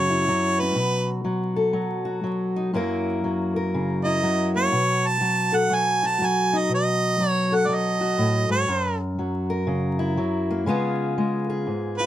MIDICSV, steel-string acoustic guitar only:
0, 0, Header, 1, 2, 480
1, 0, Start_track
1, 0, Tempo, 495868
1, 740, Time_signature, 4, 2, 24, 8
1, 11675, End_track
2, 0, Start_track
2, 0, Title_t, "Steel-string acoustic guitar"
2, 0, Program_c, 0, 25
2, 0, Note_on_c, 0, 42, 72
2, 0, Note_on_c, 0, 49, 58
2, 0, Note_on_c, 0, 54, 66
2, 0, Note_on_c, 0, 58, 50
2, 0, Note_on_c, 0, 66, 64
2, 97, Note_on_c, 0, 64, 57
2, 266, Note_off_c, 0, 49, 0
2, 273, Note_off_c, 0, 54, 0
2, 276, Note_on_c, 0, 54, 62
2, 569, Note_off_c, 0, 58, 0
2, 591, Note_on_c, 0, 61, 56
2, 724, Note_off_c, 0, 64, 0
2, 726, Note_off_c, 0, 42, 0
2, 730, Note_on_c, 0, 47, 75
2, 732, Note_off_c, 0, 61, 0
2, 1202, Note_off_c, 0, 54, 0
2, 1206, Note_on_c, 0, 54, 61
2, 1510, Note_off_c, 0, 66, 0
2, 1514, Note_on_c, 0, 69, 58
2, 1676, Note_off_c, 0, 54, 0
2, 1676, Note_on_c, 0, 54, 59
2, 1985, Note_on_c, 0, 66, 58
2, 2165, Note_off_c, 0, 54, 0
2, 2165, Note_on_c, 0, 54, 59
2, 2481, Note_on_c, 0, 63, 55
2, 2627, Note_off_c, 0, 47, 0
2, 2629, Note_off_c, 0, 69, 0
2, 2634, Note_off_c, 0, 63, 0
2, 2648, Note_on_c, 0, 42, 71
2, 2652, Note_off_c, 0, 54, 0
2, 2656, Note_on_c, 0, 54, 62
2, 2663, Note_on_c, 0, 58, 58
2, 2667, Note_off_c, 0, 66, 0
2, 2671, Note_on_c, 0, 64, 57
2, 2675, Note_on_c, 0, 70, 73
2, 3133, Note_off_c, 0, 54, 0
2, 3137, Note_on_c, 0, 54, 58
2, 3437, Note_off_c, 0, 70, 0
2, 3448, Note_on_c, 0, 70, 63
2, 3624, Note_on_c, 0, 49, 60
2, 3909, Note_off_c, 0, 64, 0
2, 3921, Note_on_c, 0, 64, 55
2, 4092, Note_off_c, 0, 54, 0
2, 4096, Note_on_c, 0, 54, 60
2, 4097, Note_off_c, 0, 49, 0
2, 4398, Note_off_c, 0, 58, 0
2, 4410, Note_on_c, 0, 58, 53
2, 4552, Note_off_c, 0, 64, 0
2, 4555, Note_off_c, 0, 70, 0
2, 4568, Note_off_c, 0, 42, 0
2, 4573, Note_on_c, 0, 47, 69
2, 4578, Note_off_c, 0, 58, 0
2, 5040, Note_off_c, 0, 54, 0
2, 5044, Note_on_c, 0, 54, 61
2, 5346, Note_on_c, 0, 69, 63
2, 5518, Note_off_c, 0, 54, 0
2, 5518, Note_on_c, 0, 54, 57
2, 5839, Note_on_c, 0, 66, 57
2, 6018, Note_off_c, 0, 54, 0
2, 6018, Note_on_c, 0, 54, 63
2, 6322, Note_on_c, 0, 63, 55
2, 6465, Note_off_c, 0, 69, 0
2, 6467, Note_off_c, 0, 47, 0
2, 6473, Note_off_c, 0, 63, 0
2, 6478, Note_on_c, 0, 47, 68
2, 6968, Note_off_c, 0, 54, 0
2, 6971, Note_on_c, 0, 54, 61
2, 7280, Note_on_c, 0, 69, 61
2, 7432, Note_off_c, 0, 54, 0
2, 7444, Note_on_c, 0, 54, 64
2, 7748, Note_off_c, 0, 66, 0
2, 7752, Note_on_c, 0, 66, 57
2, 7917, Note_off_c, 0, 47, 0
2, 7921, Note_on_c, 0, 45, 64
2, 8216, Note_off_c, 0, 45, 0
2, 8220, Note_on_c, 0, 44, 59
2, 8389, Note_off_c, 0, 54, 0
2, 8390, Note_off_c, 0, 66, 0
2, 8395, Note_off_c, 0, 69, 0
2, 8401, Note_off_c, 0, 44, 0
2, 8405, Note_on_c, 0, 42, 76
2, 8893, Note_on_c, 0, 54, 58
2, 9194, Note_on_c, 0, 70, 67
2, 9358, Note_on_c, 0, 49, 61
2, 9671, Note_on_c, 0, 64, 61
2, 9837, Note_off_c, 0, 54, 0
2, 9849, Note_off_c, 0, 49, 0
2, 9849, Note_on_c, 0, 54, 63
2, 10169, Note_on_c, 0, 58, 53
2, 10313, Note_off_c, 0, 64, 0
2, 10315, Note_off_c, 0, 70, 0
2, 10321, Note_on_c, 0, 49, 73
2, 10326, Note_off_c, 0, 54, 0
2, 10330, Note_on_c, 0, 56, 67
2, 10335, Note_off_c, 0, 42, 0
2, 10337, Note_off_c, 0, 58, 0
2, 10341, Note_on_c, 0, 59, 63
2, 10348, Note_on_c, 0, 65, 63
2, 10359, Note_on_c, 0, 68, 70
2, 10816, Note_off_c, 0, 56, 0
2, 10820, Note_on_c, 0, 56, 59
2, 11124, Note_off_c, 0, 68, 0
2, 11128, Note_on_c, 0, 68, 61
2, 11293, Note_off_c, 0, 49, 0
2, 11293, Note_on_c, 0, 44, 56
2, 11606, Note_off_c, 0, 65, 0
2, 11618, Note_on_c, 0, 65, 56
2, 11675, Note_off_c, 0, 44, 0
2, 11675, Note_off_c, 0, 56, 0
2, 11675, Note_off_c, 0, 59, 0
2, 11675, Note_off_c, 0, 65, 0
2, 11675, Note_off_c, 0, 68, 0
2, 11675, End_track
0, 0, End_of_file